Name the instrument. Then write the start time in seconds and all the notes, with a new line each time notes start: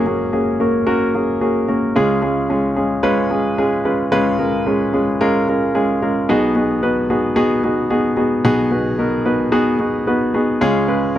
grand piano
Already playing: F#1 F#2 A#3 C#4 F#4 G#4 A#4
0.06 A#3 C#4 F#4 G#4
0.33 A#3 C#4 F#4 G#4
0.60 A#3 C#4 F#4 A#4
0.86 A#3 C#4 F#4 A#4
1.14 A#3 C#4 F#4 G#4
1.41 A#3 C#4 F#4 G#4
1.68 A#3 C#4 F#4 A#4
1.96 C#2 C#3 G#3 C#4 F4 G#4
2.22 G#3 C#4 F4 G#4
2.50 G#3 C#4 F4 G#4
2.76 G#3 C#4 F4 G#4
3.03 G#3 C#4 F4 B4
3.30 G#3 C#4 F4 G#4
3.58 G#3 C#4 F4 G#4
3.85 G#3 C#4 F4 B4
4.12 C#2 C#3 G#3 C#4 F4 B4
4.39 G#3 C#4 F4 A#4
4.66 G#3 C#4 F4 G#4
4.93 G#3 C#4 F4 G#4
5.21 G#3 C#4 F4 A#4
5.49 G#3 C#4 F4 A#4
5.75 G#3 C#4 F4 G#4
6.02 G#3 C#4 F4 A#4
6.29 B1 B2 B3 D#4 F#4 G#4
6.55 B3 D#4 F#4 G#4
6.83 B3 D#4 F#4 B4
7.10 B3 D#4 F#4 G#4
7.36 B3 D#4 F#4 G#4
7.64 B3 D#4 F#4 G#4
7.90 B3 D#4 F#4 G#4
8.17 B3 D#4 F#4 G#4
8.44 B1 B2 B3 D#4 F#4 G#4
8.71 B3 D#4 F#4 B4
8.98 B3 D#4 F#4 A#4
9.25 B3 D#4 F#4 B4
9.52 B3 D#4 F#4 G#4
9.79 B3 D#4 F#4 G#4
10.07 B3 D#4 F#4 B4
10.34 B3 D#4 F#4 G#4
10.61 C#2 C#3 G#3 C#4 F4 G#4
10.88 G#3 C#4 F4 B4
11.15 G#3